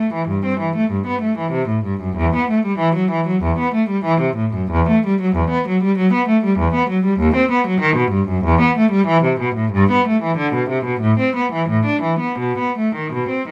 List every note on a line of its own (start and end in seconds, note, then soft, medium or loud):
0.00 0.12 A3 medium
0.14 0.28 E3 medium
0.28 0.43 G2 medium
0.45 0.60 C4 medium
0.60 0.75 E3 medium
0.76 0.91 A3 medium
0.91 1.06 G2 medium
1.07 1.22 B3 medium
1.22 1.37 A3 medium
1.38 1.54 E3 medium
1.52 1.68 C3 medium
1.69 1.85 A2 medium
1.85 2.01 G2 medium
2.01 2.17 F#2 medium
2.17 2.32 E2 medium
2.36 2.49 B3 medium
2.50 2.64 A3 medium
2.66 2.80 G3 medium
2.79 2.94 E3 medium
2.95 3.10 F#3 medium
3.11 3.26 E3 medium
3.27 3.42 F#3 medium
3.43 3.57 E2 medium
3.59 3.73 B3 medium
3.74 3.88 A3 medium
3.89 4.04 G3 medium
4.05 4.19 E3 medium
4.21 4.36 C3 medium
4.36 4.52 A2 medium
4.54 4.69 F#2 medium
4.71 4.86 E2 medium
4.89 5.03 A3 medium
5.06 5.19 G3 medium
5.21 5.34 F#3 medium
5.36 5.49 E2 medium
5.50 5.64 B3 medium
5.68 5.81 F#3 medium
5.83 5.96 G3 medium
5.98 6.12 F#3 medium
6.13 6.27 B3 medium
6.28 6.42 A3 medium
6.44 6.58 G3 medium
6.59 6.73 E2 medium
6.74 6.89 B3 medium
6.89 7.04 F#3 medium
7.04 7.19 G3 medium
7.20 7.34 D#2 loud
7.36 7.50 C4 medium
7.51 7.66 B3 medium
7.67 7.81 F#3 medium
7.81 7.96 D#3 medium
7.96 8.12 B2 medium
8.11 8.28 G2 medium
8.28 8.44 F#2 medium
8.44 8.60 E2 loud
8.61 8.77 B3 medium
8.78 8.93 A3 medium
8.91 9.07 G3 medium
9.07 9.23 E3 medium
9.23 9.40 C3 medium
9.40 9.56 B2 medium
9.56 9.73 A2 medium
9.72 9.90 G2 loud
9.92 10.07 B3 medium
10.08 10.23 A3 medium
10.23 10.39 E3 medium
10.37 10.54 D3 medium
10.54 10.70 B2 medium
10.69 10.86 C3 medium
10.85 11.02 B2 medium
11.01 11.18 A2 medium
11.19 11.35 C4 medium
11.36 11.52 B3 medium
11.52 11.69 E3 medium
11.69 11.87 A2 medium
11.86 12.04 D4 medium
12.02 12.21 E3 medium
12.20 12.39 B3 medium
12.40 12.58 B2 medium
12.59 12.77 B3 medium
12.79 12.95 A3 medium
12.96 13.13 D#3 medium
13.13 13.30 B2 medium
13.29 13.47 C4 medium